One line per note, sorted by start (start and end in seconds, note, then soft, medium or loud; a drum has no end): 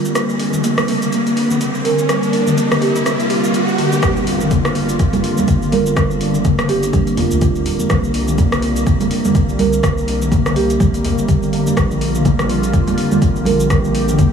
0.00 0.12 D3 medium
0.00 3.99 G3 medium
0.00 3.99 A#3 medium
0.00 0.14 G4 medium
0.00 riser medium
0.05 cabasa medium
0.15 3.99 C3 medium
0.15 0.29 G3 medium
0.15 cross-stick medium
0.15 closed hi-hat medium
0.15 cabasa medium
0.29 cabasa soft
0.40 0.53 D4 medium
0.40 open hi-hat medium
0.53 mid tom medium
0.53 cabasa medium
0.64 0.76 A#3 loud
0.64 closed hi-hat medium
0.64 cabasa medium
0.78 cross-stick loud
0.78 closed hi-hat soft
0.78 mid tom medium
0.78 cabasa soft
0.88 1.01 C4 medium
0.88 open hi-hat medium
1.02 closed hi-hat soft
1.02 cabasa medium
1.12 1.20 C4 medium
1.12 closed hi-hat medium
1.12 cabasa medium
1.26 1.32 A#3 medium
1.26 closed hi-hat soft
1.26 cabasa soft
1.36 1.50 D4 medium
1.36 open hi-hat medium
1.51 mid tom medium
1.51 cabasa medium
1.61 1.74 C4 medium
1.61 closed hi-hat medium
1.61 cabasa medium
1.75 cabasa soft
1.85 1.98 D3 medium
1.85 2.07 A#4 loud
1.85 open hi-hat medium
1.99 cabasa medium
2.09 2.22 G3 medium
2.09 cross-stick medium
2.09 closed hi-hat medium
2.09 cabasa medium
2.23 closed hi-hat soft
2.23 cabasa soft
2.33 2.47 D4 medium
2.33 open hi-hat medium
2.47 mid tom loud
2.47 cabasa medium
2.57 2.70 A#3 loud
2.57 closed hi-hat medium
2.57 cabasa medium
2.72 cross-stick loud
2.72 closed hi-hat soft
2.72 mid tom medium
2.72 cabasa soft
2.81 2.94 C4 medium
2.81 2.93 G4 loud
2.81 open hi-hat medium
2.96 closed hi-hat soft
2.96 cabasa medium
3.06 3.13 C4 medium
3.06 cross-stick medium
3.06 closed hi-hat medium
3.06 cabasa medium
3.20 3.25 A#3 medium
3.20 closed hi-hat soft
3.20 cabasa soft
3.30 3.43 G4 medium
3.30 open hi-hat medium
3.44 cabasa medium
3.54 3.68 G3 medium
3.54 closed hi-hat medium
3.54 cabasa medium
3.68 cabasa soft
3.78 3.91 D3 loud
3.78 open hi-hat medium
3.92 3.98 D4 medium
3.92 cabasa medium
4.03 4.97 G1 loud
4.03 7.86 D3 medium
4.03 4.16 G3 medium
4.03 14.33 G3 medium
4.03 14.33 A#3 medium
4.03 7.86 F4 loud
4.03 kick loud
4.03 cross-stick loud
4.03 closed hi-hat medium
4.03 impact medium
4.03 cabasa medium
4.17 cabasa soft
4.27 4.40 D4 medium
4.27 open hi-hat loud
4.41 mid tom medium
4.41 cabasa medium
4.51 4.63 A#3 loud
4.51 kick loud
4.51 closed hi-hat medium
4.51 low conga loud
4.51 cabasa medium
4.65 cross-stick loud
4.65 closed hi-hat soft
4.65 mid tom medium
4.65 cabasa soft
4.75 4.88 C4 medium
4.75 open hi-hat medium
4.89 closed hi-hat soft
4.89 cabasa medium
4.99 5.07 C4 medium
4.99 kick loud
4.99 closed hi-hat medium
4.99 cabasa medium
5.13 5.19 A#3 medium
5.13 closed hi-hat soft
5.13 high conga loud
5.13 low conga medium
5.13 cabasa soft
5.24 5.37 D4 medium
5.24 open hi-hat loud
5.38 mid tom medium
5.38 high conga loud
5.38 cabasa medium
5.48 5.61 C4 medium
5.48 kick loud
5.48 closed hi-hat medium
5.48 cabasa medium
5.62 5.94 G1 loud
5.62 cabasa soft
5.72 5.85 D3 medium
5.72 5.94 A#4 loud
5.72 open hi-hat medium
5.72 high conga loud
5.86 cabasa medium
5.96 6.90 G1 loud
5.96 6.10 G3 medium
5.96 kick loud
5.96 cross-stick loud
5.96 closed hi-hat medium
5.96 cabasa medium
6.11 cabasa soft
6.21 6.34 D4 medium
6.21 open hi-hat medium
6.35 mid tom medium
6.35 cabasa medium
6.45 6.57 A#3 loud
6.45 kick loud
6.45 closed hi-hat medium
6.45 low conga loud
6.45 cabasa medium
6.59 cross-stick loud
6.59 closed hi-hat soft
6.59 mid tom medium
6.59 cabasa soft
6.69 6.82 C4 medium
6.69 6.80 G4 loud
6.69 open hi-hat medium
6.83 6.90 D4 medium
6.83 closed hi-hat soft
6.83 cabasa medium
6.93 7.28 G1 loud
6.93 7.01 C4 medium
6.93 7.02 D4 medium
6.93 kick loud
6.93 closed hi-hat medium
6.93 high conga loud
6.93 cabasa medium
7.07 7.13 A#3 medium
7.07 closed hi-hat soft
7.07 cabasa soft
7.17 7.31 D4 medium
7.17 7.66 F4 loud
7.17 open hi-hat medium
7.17 low conga loud
7.31 7.67 D2 medium
7.31 cabasa medium
7.41 7.55 C4 medium
7.41 kick loud
7.41 closed hi-hat medium
7.41 cabasa medium
7.55 cabasa soft
7.66 7.77 D1 medium
7.66 7.78 D3 medium
7.66 open hi-hat medium
7.80 high conga medium
7.80 cabasa medium
7.90 8.84 C2 loud
7.90 11.73 C3 medium
7.90 8.03 G3 medium
7.90 kick loud
7.90 cross-stick loud
7.90 closed hi-hat medium
7.90 cabasa medium
8.04 cabasa soft
8.14 8.27 D4 medium
8.14 open hi-hat medium
8.28 mid tom loud
8.28 cabasa medium
8.38 8.51 A#3 loud
8.38 kick loud
8.38 closed hi-hat medium
8.38 low conga loud
8.38 cabasa medium
8.52 cross-stick loud
8.52 closed hi-hat soft
8.52 mid tom medium
8.52 cabasa soft
8.62 8.75 C4 medium
8.62 open hi-hat medium
8.76 closed hi-hat soft
8.76 cabasa medium
8.87 8.94 C4 medium
8.87 kick loud
8.87 closed hi-hat medium
8.87 cabasa medium
9.00 9.06 A#3 medium
9.00 closed hi-hat soft
9.00 high conga loud
9.00 low conga medium
9.00 cabasa soft
9.11 9.24 D4 medium
9.11 open hi-hat medium
9.25 mid tom medium
9.25 high conga loud
9.25 cabasa medium
9.35 9.48 C4 medium
9.35 kick loud
9.35 closed hi-hat medium
9.35 cabasa medium
9.49 9.81 C2 loud
9.49 cabasa soft
9.59 9.72 D3 medium
9.59 9.81 A#4 loud
9.59 open hi-hat medium
9.59 high conga loud
9.73 cabasa medium
9.83 10.77 C2 loud
9.83 9.97 G3 medium
9.83 kick loud
9.83 cross-stick loud
9.83 closed hi-hat medium
9.83 cabasa medium
9.98 cabasa soft
10.08 10.21 D4 medium
10.08 open hi-hat medium
10.22 mid tom medium
10.22 cabasa medium
10.32 10.44 A#3 loud
10.32 kick loud
10.32 closed hi-hat medium
10.32 low conga loud
10.32 cabasa medium
10.46 cross-stick medium
10.46 closed hi-hat soft
10.46 mid tom medium
10.46 cabasa soft
10.56 10.69 C4 medium
10.56 10.67 G4 medium
10.56 open hi-hat medium
10.70 closed hi-hat soft
10.70 cabasa medium
10.80 11.15 C2 loud
10.80 10.88 C4 medium
10.80 kick loud
10.80 closed hi-hat medium
10.80 high conga loud
10.80 cabasa medium
10.94 11.00 A#3 medium
10.94 closed hi-hat soft
10.94 cabasa soft
11.04 11.18 G4 medium
11.04 open hi-hat medium
11.04 low conga medium
11.18 11.50 G1 medium
11.18 cabasa medium
11.28 11.42 G3 medium
11.28 kick loud
11.28 closed hi-hat medium
11.28 cabasa medium
11.43 cabasa soft
11.53 11.64 G1 medium
11.53 11.65 D3 loud
11.53 open hi-hat medium
11.67 11.72 D4 medium
11.67 high conga medium
11.67 cabasa medium
11.77 12.71 A#1 loud
11.77 14.33 D3 medium
11.77 11.90 G3 medium
11.77 13.69 F4 medium
11.77 kick loud
11.77 cross-stick medium
11.77 closed hi-hat medium
11.77 cabasa medium
11.91 cabasa soft
12.01 12.14 D4 medium
12.01 open hi-hat medium
12.15 mid tom loud
12.15 cabasa medium
12.25 12.38 A#3 loud
12.25 kick loud
12.25 closed hi-hat medium
12.25 low conga loud
12.25 cabasa medium
12.39 cross-stick medium
12.39 closed hi-hat soft
12.39 mid tom medium
12.39 cabasa soft
12.49 12.62 C4 medium
12.49 open hi-hat medium
12.63 closed hi-hat soft
12.63 cabasa medium
12.73 12.81 C4 medium
12.73 kick loud
12.73 closed hi-hat medium
12.73 cabasa medium
12.87 12.93 A#3 medium
12.87 closed hi-hat soft
12.87 high conga loud
12.87 low conga medium
12.87 cabasa soft
12.98 13.11 D4 medium
12.98 open hi-hat medium
13.12 mid tom medium
13.12 high conga loud
13.12 cabasa medium
13.22 13.35 C4 medium
13.22 kick loud
13.22 closed hi-hat medium
13.22 cabasa medium
13.36 13.68 A#1 loud
13.36 cabasa soft
13.45 13.59 D3 medium
13.45 13.68 A#4 loud
13.45 open hi-hat medium
13.45 high conga loud
13.60 cabasa medium
13.70 14.33 A#1 loud
13.70 13.84 G3 medium
13.70 14.33 G4 medium
13.70 kick loud
13.70 cross-stick medium
13.70 closed hi-hat medium
13.70 cabasa medium
13.84 cabasa soft
13.94 14.08 D4 medium
13.94 open hi-hat medium
14.09 mid tom loud
14.09 cabasa medium
14.19 14.31 A#3 loud
14.19 kick loud
14.19 closed hi-hat medium
14.19 low conga loud
14.19 cabasa medium